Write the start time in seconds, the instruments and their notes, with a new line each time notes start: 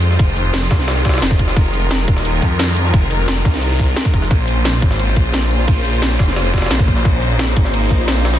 Already playing: detuned saw bass F2, string section D#3 G#3 F4 C5
0.02 closed hi-hat, ride, shaker
0.11 snare, shaker
0.19 detuned saw bass F1, kick, closed hi-hat, ride, ride bell, shaker
0.36 closed hi-hat, ride
0.45 shaker
0.54 snare, closed hi-hat, ride, ride bell, shaker
0.62 snare
0.71 detuned saw bass C2, kick, snare, closed hi-hat, open hi-hat, shaker
0.79 snare
0.88 snare, closed hi-hat, open hi-hat, ride bell, shaker
0.96 shaker
1.05 kick, snare, closed hi-hat, open hi-hat
1.09 snare, open hi-hat
1.14 snare, open hi-hat
1.18 snare, open hi-hat
1.22 detuned saw bass F1, snare, closed hi-hat, ride, ride bell, shaker
1.31 kick, ride
1.39 kick, closed hi-hat, ride, shaker
1.48 snare, shaker
1.56 detuned saw bass F1, string section A#4, kick, closed hi-hat, ride, ride bell, shaker
1.74 closed hi-hat, ride
1.82 shaker
1.91 snare, closed hi-hat, open hi-hat, ride bell, shaker
1.99 ride
2.08 detuned saw bass D#1, kick, closed hi-hat, ride, shaker
2.17 snare
2.25 closed hi-hat, ride, ride bell, shaker
2.34 shaker
2.42 detuned saw bass F2, kick, closed hi-hat, ride
2.59 snare, closed hi-hat, ride, ride bell, shaker
2.68 snare
2.76 closed hi-hat, ride, shaker
2.85 snare, shaker
2.94 detuned saw bass F1, kick, closed hi-hat, ride, ride bell, shaker
3.11 closed hi-hat, ride
3.19 shaker
3.28 snare, closed hi-hat, ride, ride bell, shaker
3.36 snare
3.45 detuned saw bass C2, kick, snare, closed hi-hat, ride, shaker
3.54 snare
3.62 closed hi-hat, ride, ride bell, shaker
3.71 shaker
3.79 kick, closed hi-hat, ride
3.96 snare, closed hi-hat, ride, ride bell, shaker
4.05 kick, ride
4.14 detuned saw bass F1, kick, closed hi-hat, ride, shaker
4.22 snare, shaker
4.31 detuned saw bass A#1, string section C#3 A#3 F4 C5, kick, closed hi-hat, ride, ride bell, shaker
4.48 closed hi-hat, ride
4.57 shaker
4.65 snare, closed hi-hat, open hi-hat, ride bell, shaker
4.74 ride
4.82 detuned saw bass G#1, kick, closed hi-hat, ride, shaker
4.91 snare
4.99 closed hi-hat, ride, ride bell, shaker
5.08 shaker
5.16 detuned saw bass A#1, kick, closed hi-hat, ride
5.34 snare, closed hi-hat, ride, ride bell, shaker
5.42 snare
5.51 closed hi-hat, ride, shaker
5.59 snare, shaker
5.68 detuned saw bass A#1, kick, closed hi-hat, ride, ride bell, shaker
5.85 closed hi-hat, ride
5.94 shaker
6.02 snare, closed hi-hat, ride, ride bell, shaker
6.11 snare
6.19 detuned saw bass F1, kick, snare, closed hi-hat, open hi-hat, shaker
6.28 snare
6.36 snare, closed hi-hat, open hi-hat, ride bell, shaker
6.45 shaker
6.54 kick, snare, closed hi-hat, open hi-hat
6.58 snare, open hi-hat
6.62 snare, open hi-hat
6.66 snare, open hi-hat
6.71 detuned saw bass A#1, snare, closed hi-hat, ride, ride bell, shaker
6.79 kick, ride
6.88 kick, closed hi-hat, ride, shaker
6.96 snare, shaker
7.05 detuned saw bass A#1, string section D#4, kick, closed hi-hat, ride, ride bell, shaker
7.22 closed hi-hat, ride
7.31 shaker
7.39 snare, closed hi-hat, open hi-hat, ride bell, shaker
7.48 ride
7.56 detuned saw bass G#1, kick, closed hi-hat, ride, shaker
7.65 snare
7.74 closed hi-hat, ride, ride bell, shaker
7.82 shaker
7.91 detuned saw bass A#1, kick, closed hi-hat, ride
8.08 snare, closed hi-hat, ride, ride bell, shaker
8.17 snare
8.25 snare, closed hi-hat, open hi-hat, shaker
8.34 snare, open hi-hat, shaker